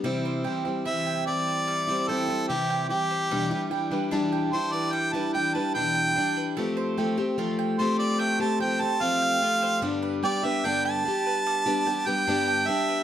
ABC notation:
X:1
M:4/4
L:1/16
Q:1/4=74
K:C
V:1 name="Harmonica"
z4 e2 d4 A2 G2 G2- | G2 z4 c d g a g a g4 | z6 c d g a g a f4 | z2 d e g a6 g3 e2 |]
V:2 name="Mandolin"
G, c g c E g E c G, c g c E g E c | G, B g B D g D B G, B g B D g D B | A, c g c F g F c A, c g c F g F c | G, B g B D g D B G, B g B D g D B |]
V:3 name="Steel-string acoustic guitar"
[C,E,G,CE]2 [E,G,CE] [G,CE] [C,E,G,CE]2 [E,G,CE]3 [G,CE] [E,G,CE] [G,CE] [C,E,G,CE]2 [E,G,CE]2 | [E,,B,,E,G,DE] [E,G,DE] [E,G,DE] [E,G,DE] [E,,B,,E,G,DE]2 [E,G,DE]3 [E,G,DE] [E,G,DE] [E,G,DE] [E,,B,,E,G,DE]2 [E,G,DE]2 | [F,A,CG]2 [F,A,CG] [A,CG] [F,A,CG]2 [F,A,CG]3 [A,CG] [F,A,CG] [A,CG] [F,A,CG]2 [F,A,CG]2 | [G,,D,G,B,DG]2 [G,B,DG] [G,B,DG] [G,,D,G,B,DG]2 [G,B,DG]3 [G,B,DG] [G,B,DG] [G,B,DG] [G,,D,G,B,DG]2 [G,B,DG]2 |]